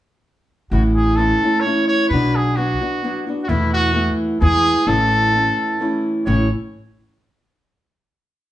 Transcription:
0.71 upright bass A1, nylon-string guitar A2 E3 A3 C#4 E4, trumpet F#4
0.96 trumpet G#4
1.16 nylon-string guitar E3 A3 C#4 E4, trumpet A4
1.43 nylon-string guitar A3 C#4 E4
1.60 trumpet C#5
1.65 nylon-string guitar E3 A3 C#4 E4
1.88 trumpet C#5
2.09 upright bass B1, nylon-string guitar B2, trumpet B4
2.13 nylon-string guitar F#3 B3 D4 F#4
2.36 trumpet G#4
2.56 nylon-string guitar F#3 B3 D4 F#4, trumpet F#4
2.81 nylon-string guitar B3 D4 F#4
3.03 nylon-string guitar F#3 B3 D4 F#4
3.27 nylon-string guitar B3 D4 F#4
3.44 trumpet F#4
3.48 upright bass E2, nylon-string guitar E2 B2 E3 A3 B3 E4, trumpet E4
3.74 trumpet F#4
3.93 nylon-string guitar E3 A3 B3 E4
4.40 upright bass E2, nylon-string guitar E3 G#3 B3 E4, trumpet G#4
4.86 upright bass A1, nylon-string guitar A2 E3 A3 C#4 E4, trumpet A4
5.34 nylon-string guitar E3 A3 C#4 E4
5.80 nylon-string guitar E3 A3 C#4 E4
6.26 upright bass A1, nylon-string guitar A2 E3 A3 C#4 E4, trumpet C#5

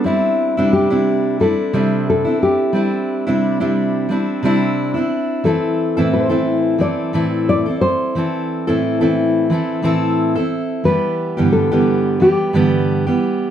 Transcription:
0.04 steel-string acoustic guitar G3 C4 D4 E4, nylon-string guitar E4
0.57 steel-string acoustic guitar C3 G3 C4 D4 E4
0.73 nylon-string guitar G4
0.90 steel-string acoustic guitar C3 G3 C4 D4 E4
1.40 steel-string acoustic guitar G3 C4 D4 E4, nylon-string guitar A4
1.73 steel-string acoustic guitar C3 G3 C4 D4 E4
2.10 nylon-string guitar A4
2.25 steel-string acoustic guitar C4 D4 E4
2.43 nylon-string guitar G4
2.73 steel-string acoustic guitar G3 C4 D4 E4
3.27 steel-string acoustic guitar C3 G3 C4 D4 E4
3.60 steel-string acoustic guitar C3 G3 C4 D4 E4
4.09 steel-string acoustic guitar G3 C4 D4 E4
4.43 steel-string acoustic guitar C3 G3 C4 D4 E4
4.94 steel-string acoustic guitar C4 D4 E4
5.44 steel-string acoustic guitar E3 C4 E4 A4, nylon-string guitar A4
5.97 steel-string acoustic guitar A2 E3 C4 E4 A4
6.13 nylon-string guitar C5
6.30 steel-string acoustic guitar A2 E3 C4 E4 A4
6.62 nylon-string guitar B4
6.78 steel-string acoustic guitar E3 C4 E4 A4, nylon-string guitar D5
7.13 steel-string acoustic guitar A2 E3 C4 E4 A4
7.49 nylon-string guitar D5
7.66 steel-string acoustic guitar C4 E4 A4
7.81 nylon-string guitar C5
8.15 steel-string acoustic guitar E3 C4 E4 A4
8.67 steel-string acoustic guitar A2 E3 C4 E4 A4
9.01 steel-string acoustic guitar A2 E3 C4 E4 A4
9.50 steel-string acoustic guitar E3 C4 E4 A4
9.82 steel-string acoustic guitar A2 E3 C4 E4 A4
10.35 steel-string acoustic guitar C4 E4 A4
10.84 steel-string acoustic guitar E3 G3 B3 G4, nylon-string guitar B4
11.37 steel-string acoustic guitar G2 D3 E3 G3 B3 G4
11.53 nylon-string guitar A4
11.71 steel-string acoustic guitar G2 D3 E3 G3 B3 G4
12.20 steel-string acoustic guitar E3 G3 B3 G4, nylon-string guitar G4
12.53 steel-string acoustic guitar G2 D3 E3 G3 B3 G4
13.07 steel-string acoustic guitar E3 G3 B3 G4

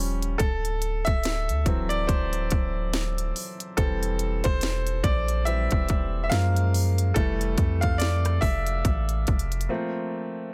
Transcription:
Already playing: 808-style bass D#1, grand piano F3 G3 C#4
0.22 closed hi-hat
0.38 808-style bass D1, grand piano A4, kick, closed hi-hat
0.65 closed hi-hat
0.82 closed hi-hat
1.05 808-style bass D1, grand piano E5, kick, closed hi-hat
1.24 snare, closed hi-hat
1.49 808-style bass D2, closed hi-hat
1.66 808-style bass D1, grand piano E3 F#3 C4, kick, closed hi-hat
1.89 grand piano D5, closed hi-hat
2.07 808-style bass D1, grand piano C5, kick, closed hi-hat
2.33 closed hi-hat
2.51 808-style bass D1, kick, closed hi-hat
2.93 snare, closed hi-hat
3.18 closed hi-hat
3.36 open hi-hat
3.60 closed hi-hat
3.77 808-style bass E1, grand piano E3 G3 C4 A4, kick, closed hi-hat
4.03 closed hi-hat
4.19 closed hi-hat
4.44 808-style bass E1, grand piano C5, kick, closed hi-hat
4.61 snare, closed hi-hat
4.87 closed hi-hat
5.04 808-style bass A#1, grand piano D5, kick, closed hi-hat
5.28 closed hi-hat
5.45 grand piano E3 G3 C4 E5, closed hi-hat
5.71 808-style bass E1, kick, closed hi-hat
5.89 kick, closed hi-hat
6.24 grand piano E5
6.30 808-style bass F#2, grand piano F3 G#3 A#3 F5, snare, closed hi-hat
6.56 closed hi-hat
6.74 open hi-hat
6.98 closed hi-hat
7.14 808-style bass F1, grand piano E3 G3 A3 A4, kick, closed hi-hat
7.41 closed hi-hat
7.58 808-style bass F2, kick, closed hi-hat
7.81 grand piano F5, kick, closed hi-hat
7.98 grand piano D5, snare, closed hi-hat
8.25 cross-stick, closed hi-hat
8.41 808-style bass F1, grand piano E5, kick, open hi-hat
8.67 closed hi-hat
8.85 808-style bass A1, kick, closed hi-hat
9.09 closed hi-hat
9.27 808-style bass F1, kick, closed hi-hat
9.39 closed hi-hat
9.52 closed hi-hat
9.61 closed hi-hat
9.69 grand piano F3 A3 A#3 C4

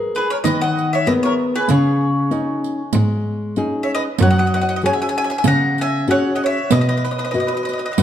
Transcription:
Already playing: nylon-string guitar G#4 A#4 B4
0.15 mandolin G#4 B4, riq
0.30 mandolin A#4 C#5
0.44 nylon-string guitar D#3, cello D#3, mandolin B4 D#5, riq
0.61 mandolin D#5 F#5
0.78 riq
0.93 mandolin C#5 E5
1.06 nylon-string guitar B3 G#4 A#4, mandolin B4 D#5, riq
1.23 mandolin A#4 C#5
1.56 mandolin G#4 B4
1.68 nylon-string guitar C#3, cello C#3, mandolin G#4 C#5, riq
2.31 nylon-string guitar C#4 D#4 G#4, riq
2.64 riq
2.93 cello G#2, nylon-string guitar G#3, riq
3.56 nylon-string guitar C#4 D#4 G#4, riq
3.83 mandolin C#5 E5
3.95 mandolin B4 D#5
4.18 cello F#2, nylon-string guitar F#3, mandolin F#5, riq
4.23 mandolin C#5
4.30 mandolin D#5 F#5
4.38 mandolin D#5 F#5
4.46 mandolin D#5 F#5
4.54 mandolin D#5 F#5
4.61 mandolin D#5 F#5
4.69 mandolin D#5 F#5
4.76 mandolin D#5 F#5
4.81 nylon-string guitar C#4 F#4 G#4, riq
4.86 mandolin C#5 G#5
4.93 mandolin E5 G#5
5.02 mandolin E5 G#5
5.09 mandolin E5 G#5
5.18 mandolin E5 G#5
5.24 mandolin E5 G#5
5.30 mandolin E5 G#5
5.38 mandolin E5 G#5
5.44 nylon-string guitar C#3, cello C#3, mandolin F#5 A#5, riq
5.78 mandolin E5 G#5, riq
6.08 nylon-string guitar C#4 F#4 G#4, mandolin C#5 F#5, riq
6.35 mandolin D#5 F#5
6.44 mandolin C#5 E5
6.70 cello B2, nylon-string guitar B3, mandolin B4 D#5, riq
6.81 mandolin B4 D#5
6.89 mandolin B4 D#5
6.97 mandolin B4 D#5
7.04 mandolin B4 D#5, riq
7.11 mandolin B4 D#5
7.18 mandolin B4 D#5
7.25 mandolin B4 D#5
7.31 nylon-string guitar F#4 B4 D#5, mandolin B4 D#5, riq
7.38 mandolin B4 D#5
7.47 mandolin B4 D#5
7.55 mandolin B4 D#5
7.63 mandolin B4 D#5
7.69 mandolin B4, riq
7.73 mandolin D#5
7.78 mandolin B4 D#5
7.86 mandolin B4 D#5
7.92 mandolin B4 D#5
7.98 cello F#2, nylon-string guitar F#3, mandolin B4 D#5, riq

